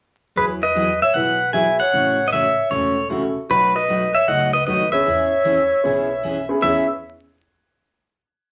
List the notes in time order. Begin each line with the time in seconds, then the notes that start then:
0.36 E2 E3 F#3 B3 E4 G#4 B4
0.63 B4 D#5
0.75 E3 F#3 B3 E4 G#4
1.02 C#5 E5
1.14 B1 E3 F#3 B3 E4 G#4 B4 F#5
1.53 E3 F#3 B3 E4 F#4 G#4 E5 G#5
1.80 C#5 F#5
1.92 A1 C#3 E3 A3 C#4 F#4
2.28 C#3 B4 D#5
2.32 E3 A3 C#4 F#4 C#5 E5
2.70 E1 C#3 E3 A3 C#4 F#4 A4 C#5
3.09 C#3 E3 A3 C#4 E4 F#4 A4
3.49 B1 B2 F#3 A3 D#4 F#4 B4
3.75 B4 D#5
3.88 B2 F#3 A3 D#4 F#4
4.14 C#5 E5
4.27 C#2 B2 F#3 A3 D#4 F#4 D#5 F#5
4.53 B4 D#5
4.67 D#2 B2 F#3 A3 D#4 F#4 B4 D#5
4.92 B3 C#4 E4 G#4 C#5 E5
5.05 E2 E3 B3 C#4 G#4
5.44 E3 B3 C#4 G#4
5.84 B1 E3 B3 C#4 E4 G#4
6.23 E3 B3 C#4 G#4
6.49 B3 C#4 E4 G#4
6.62 E2 E3 B3 C#4 E4 G#4 C#5 E5